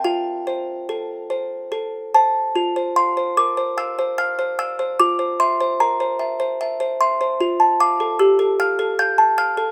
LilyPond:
\new Staff \with { instrumentName = "Music box" } { \time 3/4 \key f \major \tempo 4 = 74 << { f''2 r8 a''8~ | a''8 c'''8 d'''8 e'''8 f'''8 e'''8 | d'''8 c'''8 bes''4 r8 c'''8~ | c'''8 d'''8 e'''8 f'''8 g'''8 f'''8 | } \\ { f'8 c''8 a'8 c''8 a'8 c''8 | f'16 c''16 f''16 c''16 bes'16 c''16 f''16 c''16 f''16 c''16 f''16 c''16 | f'16 c''16 e''16 c''16 bes'16 c''16 e''16 c''16 e''16 c''16 e''16 c''16 | f'16 a''16 f''16 a'16 g'16 a'16 f''16 a'16 f''16 a''16 f''16 a'16 | } >> }